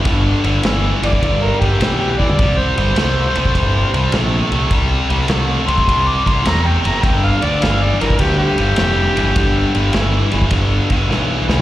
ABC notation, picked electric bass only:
X:1
M:4/4
L:1/8
Q:"Swing" 1/4=103
K:C
V:1 name="Picked electric bass" clef=bass
G,,, G,,, G,,, G,,, G,,, G,,, B,,, B,,, | C,, G,,, C,, C,, G,,, C,, _B,,, C,, | C,, C,, C,, C,, C,, C,, E,, ^F,,, | G,,, D,, G,,, G,,, D,, G,,, F,,, G,,, |
G,,, G,,, G,,, G,,, G,,, G,,, B,,, C,, |]